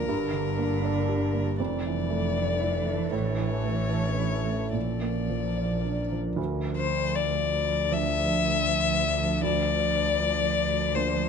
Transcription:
Already playing: D2 D3 A#3 D4 F4 A#4 D5
0.08 G1 G2 D3
0.33 D3
0.58 A#3
0.84 D5
1.08 G4
1.33 A#3
1.59 F1 F2 E3 A4 D5
1.86 E3
2.10 A3
2.37 D5
2.60 E4
2.86 A3
3.11 A1 A2 C#5
3.37 E3
3.63 A3
3.93 C#5
4.19 E4
4.45 A3
4.73 A#1 A#2 F3 D5
5.02 A#3
5.29 F3
5.57 D5
5.84 D4
6.12 F3
6.36 D2 F3 D4 A4
6.76 C5
7.15 D5
7.91 F3 D4 D5 E5
9.43 D2 A#4 D5
10.95 A#3 D4 C5 D5

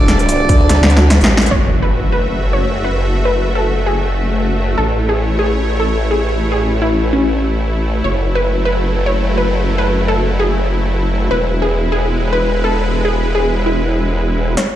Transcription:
Already playing: E1 A3 D4 F#4 A4 D5
0.08 snare, closed hi-hat
0.19 D4 A4 D5, closed hi-hat
0.29 closed hi-hat
0.49 D2, kick, closed hi-hat
0.69 D2, snare, closed hi-hat
0.80 D2, snare
0.90 closed hi-hat
0.97 snare
1.10 snare, closed hi-hat
1.21 A1, snare, closed hi-hat
1.37 snare
1.41 closed hi-hat
1.46 closed hi-hat
1.51 F#1 A3 F#4 C#5 E5, crash, impact
1.82 B4
2.12 B4
2.53 C#5
2.84 B4
3.25 B4
3.55 A4
3.86 G#4
4.78 A1 E4 A4 C#5
5.09 G#4
5.39 G#4
5.80 A4
6.11 G#4
6.52 G#4
6.82 E4
7.13 C#4
8.04 F#1 F#3 A3 C#5
8.35 B4
8.65 B4
9.06 C#5
9.38 B4
9.78 B4
10.08 A4
10.40 G#4
11.31 E1 G#3 B4
11.62 G#4
11.92 G#4
12.33 B4
12.64 A4
13.05 G#4
13.35 G#4
13.66 E4
14.57 A3 F#4 C#5 E5, snare, closed hi-hat, riser

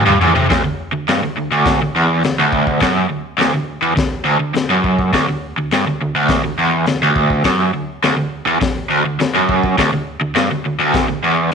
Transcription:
0.05 G2, floor tom
0.21 E2, floor tom
0.35 C3, floor tom
0.49 D2, kick, snare, open hi-hat
0.64 D2
0.93 D2
1.08 G2, snare, open hi-hat
1.23 D2
1.37 D2
1.51 D2
1.66 kick, snare, open hi-hat
1.82 D2
1.96 E2
2.23 D2, snare, open hi-hat
2.39 D2
2.53 kick
2.67 kick
2.81 F#2, kick, snare, open hi-hat
3.09 D2
3.38 D2, snare, open hi-hat
3.53 D2
3.82 E2
3.96 D2, kick, snare, open hi-hat
4.25 D2
4.40 D2
4.54 D2, snare, open hi-hat
4.70 F#2
4.84 kick
4.99 kick
5.13 D2, kick, snare, open hi-hat
5.28 D2
5.58 D2
5.71 G2, snare, open hi-hat
5.87 D2
6.01 D2
6.16 D2
6.29 kick, snare, open hi-hat
6.44 D2
6.58 E2
6.86 D2, snare, open hi-hat
7.02 D2
7.16 kick
7.30 kick
7.44 F#2, kick, snare, open hi-hat
7.73 D2
8.03 D2, snare, open hi-hat
8.17 D2
8.47 E2
8.61 D2, kick, snare, open hi-hat
8.90 D2
9.05 D2
9.20 D2, snare, open hi-hat
9.34 F#2
9.49 kick
9.63 kick
9.78 D2, kick, snare, open hi-hat
9.93 D2
10.21 D2
10.35 G2, snare, open hi-hat
10.51 D2
10.65 D2
10.79 D2
10.94 kick, snare, open hi-hat
11.08 D2
11.24 E2

